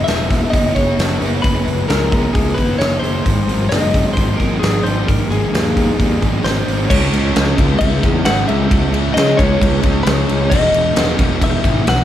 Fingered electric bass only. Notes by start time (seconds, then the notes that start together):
0.08 E1
0.54 F#1
0.77 F#1
0.98 F#1
1.21 F#1
1.45 F#1
1.67 F#1
1.89 C#2
2.35 C#2
2.58 F#1
2.79 F#1
3.02 F#1
3.26 G#1
3.47 G#1
3.70 F#1
4.17 G#1
4.40 G#1
4.62 G#1
4.85 G#1
5.09 G#1
5.31 G#1
5.53 D#2
5.99 D#2
6.23 G#1
6.44 G#1
6.67 G#1
6.91 C#2
7.14 C#2
7.36 C#2
7.59 C#2
7.81 C#2
8.04 E2
8.27 G#1
8.49 C#2
8.71 C#2
9.16 C#3
9.39 C#2
9.62 C#2
9.84 C#2
10.06 C#2
10.30 C#2
10.52 E1
10.74 E1
10.97 E1
11.19 E1
11.42 E1
11.64 G#1
11.87 B1